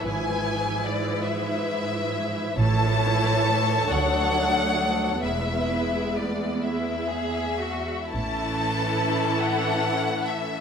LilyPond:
<<
  \new Staff \with { instrumentName = "Violin section" } { \time 6/8 \key a \major \tempo 4. = 45 gis''4 d''8 e''4. | a''4. fis''4. | e''4 d''8 e''4. | a''4. fis''4 e''8 | }
  \new Staff \with { instrumentName = "Violin section" } { \time 6/8 \key a \major b'2. | <a' cis''>2. | <e' b'>4. e'8 gis'8 fis'8 | <e' a'>2. | }
  \new Staff \with { instrumentName = "Viola section" } { \time 6/8 \key a \major <e e'>2. | <e e'>4. <fis d'>4. | <gis b>2~ <gis b>8. r16 | <e cis'>2. | }
  \new Staff \with { instrumentName = "Cello section" } { \clef bass \time 6/8 \key a \major gis,2. | a,4. d,4. | e,2~ e,8. r16 | a,2. | }
  \new Staff \with { instrumentName = "Double bass section" } { \clef bass \time 6/8 \key a \major gis,,4 r2 | a,,4 r8 d,4 r8 | e,,4 r2 | a,,4 r2 | }
>>